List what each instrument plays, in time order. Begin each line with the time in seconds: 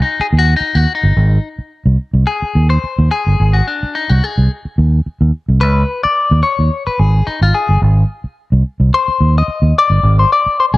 0.02 clean electric guitar D#4
0.20 clean electric guitar G#4, muted fingered electric bass stroke
0.33 fingered electric bass D#2
0.39 clean electric guitar F#4
0.56 clean electric guitar D#4
0.61 muted fingered electric bass stroke
0.75 fingered electric bass D#2, clean electric guitar F#4
0.95 clean electric guitar D#4
1.03 fingered electric bass G1
1.17 fingered electric bass G#1
1.58 muted fingered electric bass stroke
1.86 fingered electric bass C2
2.13 fingered electric bass C2
2.27 clean electric guitar G#4
2.42 muted fingered electric bass stroke
2.55 fingered electric bass D#2
2.70 clean electric guitar C5
2.84 muted fingered electric bass stroke
2.99 fingered electric bass D#2
3.11 clean electric guitar G#4
3.27 fingered electric bass G1
3.40 fingered electric bass G#1
3.53 clean electric guitar F#4
3.68 clean electric guitar D4
3.83 muted fingered electric bass stroke
3.95 clean electric guitar D#4
4.09 fingered electric bass C2, clean electric guitar F#4
4.24 clean electric guitar G#4
4.38 fingered electric bass C2
4.65 muted fingered electric bass stroke
4.78 fingered electric bass D#2
5.06 muted fingered electric bass stroke
5.21 fingered electric bass D#2
5.48 fingered electric bass C2
5.61 fingered electric bass C#2, clean electric guitar B4
6.03 clean electric guitar D5, muted fingered electric bass stroke
6.31 fingered electric bass D#2
6.43 clean electric guitar C#5
6.59 fingered electric bass D#2
6.87 clean electric guitar B4, muted fingered electric bass stroke
6.99 fingered electric bass G#1, clean electric guitar G#4
7.27 clean electric guitar D#4, muted fingered electric bass stroke
7.41 fingered electric bass G#1, clean electric guitar F4
7.55 clean electric guitar G#4
7.69 fingered electric bass G1
7.82 fingered electric bass G#1
8.24 muted fingered electric bass stroke
8.52 fingered electric bass C2
8.80 fingered electric bass C2
8.94 clean electric guitar C5
9.08 muted fingered electric bass stroke
9.21 fingered electric bass D#2
9.38 clean electric guitar D#5
9.48 muted fingered electric bass stroke
9.62 fingered electric bass D#2
9.78 clean electric guitar D5
9.90 fingered electric bass G1
10.03 fingered electric bass G#1
10.19 clean electric guitar C5
10.32 clean electric guitar D5
10.46 muted fingered electric bass stroke
10.60 clean electric guitar C5
10.74 fingered electric bass C2, clean electric guitar G#4